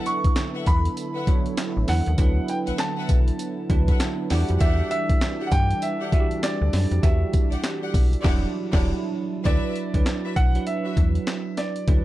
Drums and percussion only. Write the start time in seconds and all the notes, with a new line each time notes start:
0.06 closed hi-hat, tambourine
0.24 kick, closed hi-hat
0.36 snare, clap, closed hi-hat, tambourine
0.66 kick, closed hi-hat, tambourine
0.85 closed hi-hat
0.97 closed hi-hat, tambourine
1.27 kick, closed hi-hat
1.46 closed hi-hat
1.57 snare, clap, closed hi-hat, tambourine
1.88 snare, open hi-hat, tambourine
2.06 closed hi-hat
2.18 kick, closed hi-hat, tambourine
2.48 closed hi-hat, tambourine
2.67 closed hi-hat
2.78 snare, clap, closed hi-hat, tambourine
3.09 kick, closed hi-hat, tambourine
3.28 closed hi-hat
3.39 closed hi-hat, tambourine
3.70 kick, closed hi-hat
3.88 kick, closed hi-hat
4.00 snare, clap, closed hi-hat, tambourine
4.30 snare, open hi-hat, tambourine
4.49 closed hi-hat
4.60 kick, closed hi-hat, tambourine
4.91 closed hi-hat, tambourine
5.09 kick, closed hi-hat
5.21 snare, clap, closed hi-hat, tambourine
5.52 kick, closed hi-hat, tambourine
5.71 closed hi-hat
5.82 closed hi-hat, tambourine
6.12 kick, closed hi-hat
6.31 closed hi-hat
6.43 snare, clap, closed hi-hat, tambourine
6.73 snare, open hi-hat, tambourine
6.91 closed hi-hat
7.03 kick, closed hi-hat, tambourine
7.33 kick, closed hi-hat, tambourine
7.52 closed hi-hat
7.63 snare, clap, closed hi-hat, tambourine
7.94 kick, open hi-hat, tambourine
8.13 closed hi-hat
8.24 kick, snare, crash
8.73 kick, snare, crash
9.45 kick, closed hi-hat
9.76 closed hi-hat
9.94 kick, closed hi-hat
10.06 snare, clap, closed hi-hat
10.36 kick, closed hi-hat
10.55 closed hi-hat
10.67 closed hi-hat
10.97 kick, closed hi-hat
11.15 closed hi-hat
11.27 snare, clap, closed hi-hat
11.57 snare, closed hi-hat
11.76 closed hi-hat
11.88 kick, closed hi-hat